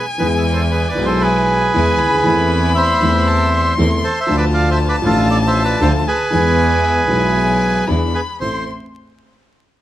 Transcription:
0.00 1.70 G#5 loud
0.18 0.93 E2 medium
0.18 0.94 E2 medium
0.18 0.93 E3 medium
0.18 0.93 G#3 medium
0.18 0.93 B3 medium
0.18 0.94 B3 medium
0.18 0.93 E4 medium
0.18 0.28 G#4 medium
0.18 0.94 G#4 medium
0.18 0.27 B4 medium
0.36 0.45 E4 medium
0.36 0.44 G#4 medium
0.53 0.63 A4 medium
0.53 0.61 C5 medium
0.71 0.88 G#4 medium
0.71 0.87 B4 medium
0.88 1.06 B4 medium
0.88 1.06 D5 medium
0.95 1.70 B1 medium
0.95 1.70 B1 loud
0.95 1.70 B2 medium
0.95 1.69 E3 medium
0.95 1.70 G#3 medium
0.95 1.70 B3 medium
0.95 1.71 B3 medium
0.95 1.70 E4 loud
0.99 1.71 G#4 medium
1.05 1.23 A4 medium
1.05 1.22 C5 medium
1.21 2.73 G#4 medium
1.21 2.71 B4 loud
1.73 1.96 E2 medium
1.73 1.96 E2 loud
1.73 1.96 E3 medium
1.73 1.96 G#3 medium
1.73 1.96 B3 medium
1.73 2.13 E4 medium
1.73 1.96 E4 medium
1.73 1.96 G#4 medium
1.73 2.00 G#5 medium
1.99 2.24 D2 medium
1.99 2.23 B5 loud
2.07 2.13 C#2 soft
2.07 2.17 G#4 medium
2.14 2.19 D2 medium
2.18 2.25 D#2 medium
2.24 2.98 E2 loud
2.24 2.98 E2 medium
2.24 2.98 E3 medium
2.24 2.98 A3 medium
2.24 2.98 C4 medium
2.24 2.98 E4 medium
2.24 2.61 A4 loud
2.24 3.29 B5 loud
2.28 2.99 E4 medium
2.75 3.74 C5 medium
2.75 3.73 E5 loud
3.00 3.74 E2 loud
3.00 3.75 E2 medium
3.00 3.02 E3 medium
3.00 3.75 E3 medium
3.00 3.74 A3 medium
3.00 3.74 C4 medium
3.00 3.75 C4 medium
3.00 3.74 E4 medium
3.04 3.76 A4 medium
3.27 3.52 A5 loud
3.52 4.25 C6 loud
3.77 4.00 E2 loud
3.77 4.00 E2 medium
3.77 4.00 E3 medium
3.77 3.99 A3 medium
3.77 3.99 C4 medium
3.77 4.00 C4 medium
3.77 3.99 E4 medium
3.77 4.00 A4 medium
4.04 4.20 A4 medium
4.04 4.19 C5 loud
4.21 4.36 C5 medium
4.21 4.36 E5 loud
4.27 5.01 D2 loud
4.27 5.01 D2 medium
4.27 5.01 D3 medium
4.27 5.00 F3 medium
4.27 5.01 A3 medium
4.27 5.01 D4 medium
4.27 5.01 F4 loud
4.27 6.33 A5 loud
4.31 5.02 A4 medium
4.37 4.45 B4 medium
4.37 4.45 D5 medium
4.54 4.70 D5 medium
4.54 4.70 F5 loud
4.71 4.78 C5 medium
4.71 4.79 E5 loud
4.89 4.96 B4 medium
4.89 4.96 D5 medium
5.02 5.77 A1 loud
5.02 5.77 A1 medium
5.02 5.77 A2 medium
5.02 5.76 F3 medium
5.02 5.76 A3 medium
5.02 5.77 A3 medium
5.02 5.77 D4 medium
5.02 5.77 F4 loud
5.02 5.29 F4 medium
5.02 5.28 A4 medium
5.06 5.78 A4 medium
5.30 5.38 A4 medium
5.30 5.38 D5 loud
5.48 5.63 C5 medium
5.48 5.63 E5 loud
5.64 5.80 B4 medium
5.64 5.80 D5 loud
5.80 6.02 D2 loud
5.80 6.03 D2 medium
5.80 6.03 D3 medium
5.80 6.02 F3 medium
5.80 6.02 A3 medium
5.80 6.03 A3 medium
5.80 6.02 D4 medium
5.80 6.03 D4 medium
5.80 6.03 F4 medium
5.80 5.92 A4 medium
5.80 6.03 A4 medium
5.80 5.93 C5 medium
6.07 7.84 G#4 medium
6.07 7.85 B4 loud
6.32 7.06 E2 loud
6.32 7.06 E2 medium
6.32 7.06 E3 medium
6.32 7.05 G#3 medium
6.32 7.06 G#3 medium
6.32 7.05 B3 medium
6.32 7.06 B3 medium
6.32 7.05 E4 loud
6.32 7.07 G#4 medium
6.32 6.83 G#5 medium
6.84 6.95 E5 medium
7.07 7.84 B1 loud
7.07 7.84 B1 medium
7.07 7.84 B2 medium
7.07 7.83 E3 medium
7.07 7.84 G#3 medium
7.07 7.84 B3 medium
7.07 7.85 B3 medium
7.07 7.84 E4 medium
7.07 7.89 G#5 medium
7.12 7.85 G#4 medium
7.87 8.10 E2 medium
7.87 8.10 E3 medium
7.87 8.10 G#3 medium
7.87 8.10 B3 medium
7.87 8.10 D4 medium
7.87 8.10 E4 medium
7.87 8.10 G#4 medium
7.87 8.40 B5 medium
8.14 8.21 G#4 medium
8.14 8.20 B4 medium
8.40 8.62 A1 medium
8.40 8.62 A3 medium
8.40 8.62 C4 soft
8.40 8.62 E4 medium
8.40 8.62 E4 soft
8.40 8.62 A4 medium
8.40 8.64 C5 medium
8.40 8.65 C6 medium

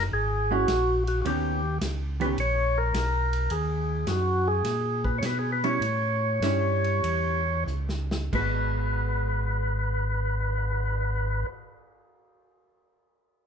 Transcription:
0.12 0.66 G#1 medium
0.12 0.53 G#4 medium
0.51 0.66 G#3 medium
0.51 0.67 C#4 medium
0.51 0.67 E4 medium
0.51 1.04 F#4 loud
0.68 1.23 A#1 medium
0.68 snare medium
0.68 hi-hat pedal medium
0.68 ride medium
1.07 1.21 F#4 medium
1.07 ride soft
1.22 1.79 D#2 medium
1.22 1.60 D#3 medium
1.22 1.25 F#4 medium
1.22 ride medium
1.26 1.60 B3 medium
1.26 1.60 C#4 medium
1.26 1.60 G4 medium
1.26 1.78 G4 medium
1.81 2.36 C#2 medium
1.81 snare medium
1.81 hi-hat pedal medium
1.81 ride medium
2.20 2.36 D#3 medium
2.20 2.36 B3 medium
2.20 2.37 C#4 medium
2.20 2.36 G4 medium
2.20 2.29 B4 loud
2.20 ride soft
2.38 2.92 A#1 medium
2.38 2.79 C#5 loud
2.38 ride medium
2.78 3.54 A#4 medium
2.94 3.49 B1 medium
2.94 snare medium
2.94 hi-hat pedal medium
2.94 ride medium
3.33 ride soft
3.50 4.06 D#2 medium
3.50 4.10 G#4 medium
3.50 ride medium
4.07 4.63 F#2 medium
4.07 4.48 F#4 medium
4.07 snare medium
4.07 hi-hat pedal soft
4.07 ride medium
4.48 5.07 G#4 medium
4.64 5.21 A#2 medium
4.64 snare soft
4.64 ride medium
5.04 5.18 B4 medium
5.04 kick soft
5.18 5.79 B2 medium
5.18 5.25 C#5 medium
5.23 5.38 B4 medium
5.23 snare medium
5.23 hi-hat pedal soft
5.23 ride medium
5.39 5.51 G#4 medium
5.52 5.65 B4 medium
5.64 5.80 G3 medium
5.64 5.80 C#4 medium
5.64 5.81 E4 medium
5.64 7.64 C#5 medium
5.64 ride soft
5.81 6.40 A2 medium
5.81 ride medium
6.41 7.01 G2 medium
6.41 7.39 G3 medium
6.41 7.39 C#4 medium
6.41 7.40 E4 medium
6.41 snare medium
6.41 hi-hat pedal medium
6.41 ride medium
6.84 ride soft
7.03 7.65 E2 medium
7.03 ride medium
7.66 8.30 C#2 medium
7.66 hi-hat pedal soft
7.89 snare soft
8.11 snare medium
8.33 11.44 G#1 medium
8.33 11.48 G#3 medium
8.33 11.50 B3 medium
8.33 11.50 F#4 medium
8.33 11.46 B4 medium
8.33 kick medium
8.33 crash medium
8.79 cymbal swell soft

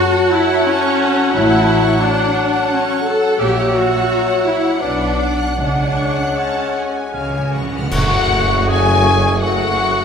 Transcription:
0.00 0.29 F#2 medium
0.00 3.36 F#3 medium
0.00 0.30 F#4 loud
0.00 0.31 F#4 medium
0.00 3.35 A4 medium
0.00 3.36 C#5 medium
0.00 3.36 F#5 medium
0.00 3.41 F#5 medium
0.00 0.16 A5 medium
0.00 3.11 A5 medium
0.14 0.32 F#5 medium
0.31 0.66 E4 medium
0.31 0.49 C#5 medium
0.47 0.65 F#5 medium
0.64 1.34 C#4 loud
0.64 1.34 C#4 medium
0.64 0.82 A5 medium
0.81 0.99 C#6 medium
0.97 1.15 A5 medium
1.15 1.33 F#5 medium
1.32 1.91 A1 medium
1.32 1.91 A2 medium
1.32 2.01 E4 loud
1.32 2.02 E4 medium
1.32 1.49 C#5 medium
1.50 1.68 F#5 medium
1.68 1.85 A5 medium
1.84 2.02 C#6 medium
2.00 2.53 D4 medium
2.00 2.71 D4 medium
2.00 2.19 A5 medium
2.18 2.36 F#5 medium
2.36 2.53 C#5 medium
2.54 2.71 F#5 medium
2.70 3.05 C#4 medium
2.70 2.89 A5 medium
2.89 3.06 C#6 medium
3.04 3.39 A4 medium
3.04 3.40 A4 medium
3.08 3.24 A5 medium
3.23 3.40 F#5 medium
3.38 3.98 A#1 medium
3.38 3.98 A#2 medium
3.38 5.25 F#3 medium
3.38 3.73 G4 medium
3.38 3.75 G4 medium
3.38 4.83 C#5 medium
3.38 4.80 C#5 medium
3.38 4.81 E5 medium
3.38 3.57 E5 medium
3.38 7.11 F#5 medium
3.38 6.26 F#5 medium
3.58 3.75 F#5 medium
3.73 4.45 F#4 medium
3.73 3.91 A#5 soft
3.92 4.10 C#6 soft
4.10 4.28 A#5 medium
4.28 4.46 F#5 soft
4.44 4.82 E4 medium
4.44 4.64 E5 medium
4.63 4.79 F#5 soft
4.79 5.46 B1 medium
4.79 5.46 B2 medium
4.79 5.57 D4 medium
4.79 5.56 D4 medium
4.79 5.31 B4 medium
4.79 5.58 D5 medium
4.79 5.31 D5 soft
4.79 4.99 F#5 soft
5.00 5.20 B5 soft
5.19 5.39 D6 soft
5.39 5.59 F#6 soft
5.57 6.25 C#2 medium
5.57 6.71 C#3 medium
5.57 6.25 C#3 soft
5.57 7.54 G#3 medium
5.57 6.35 D4 medium
5.57 7.54 C#5 medium
5.57 6.76 F#5 medium
5.57 7.15 F#5 medium
5.79 5.98 G#5 soft
5.97 6.17 C#6 soft
6.17 6.37 F#6 soft
6.36 7.14 C#4 soft
6.36 7.15 C#4 medium
6.36 6.73 A5 medium
6.36 6.57 C#6 soft
6.57 6.76 G#5 soft
6.75 6.96 F#5 soft
6.75 7.53 G#5 soft
6.95 7.15 G#5 soft
7.13 7.80 C#2 medium
7.13 7.21 C#3 soft
7.13 7.81 C#3 soft
7.13 7.72 C#5 soft
7.13 7.58 F5 soft
7.13 7.33 F5 soft
7.13 7.58 G#5 soft
7.22 7.29 C#3 soft
7.30 7.38 C#3 soft
7.36 7.46 C#3 soft
7.36 7.55 G#5 soft
7.47 7.54 C#3 soft
7.54 7.61 C#3 medium
7.54 7.92 F#5 medium
7.54 7.74 C#6 soft
7.63 7.70 C#3 medium
7.71 7.77 C#3 medium
7.78 7.87 C#3 medium
7.78 7.95 F6 soft
7.92 10.05 F#1 medium
7.92 10.05 F#2 medium
7.92 9.38 F#3 medium
7.92 9.38 A3 medium
7.92 9.39 C#4 medium
7.92 8.70 F#4 medium
7.92 9.38 F#4 medium
7.92 8.65 F#5 loud
7.92 9.38 C#6 medium
7.92 concert bass drum medium
7.92 crash medium
8.69 9.44 G#4 medium
8.69 9.42 G#5 loud
9.41 10.05 F#3 medium
9.41 10.05 A3 medium
9.41 10.05 C#4 medium
9.41 10.05 F#4 medium
9.41 10.05 F#5 medium
9.41 10.05 C#6 medium

